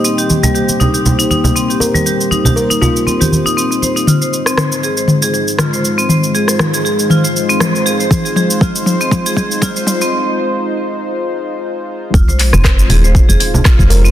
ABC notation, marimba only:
X:1
M:4/4
L:1/16
Q:"Swing 16ths" 1/4=119
K:Fm
V:1 name="Marimba"
C G z G, G z E G z E E z C G z G, | G z E G z E E z C G z E C C c E | F c z C c z A c z A A z F c z C | c z A c z A A z F c z C c z A c |
z A A z F c z C z A A z F c z C | z16 | F c z C c z A c z A A z F c z C |]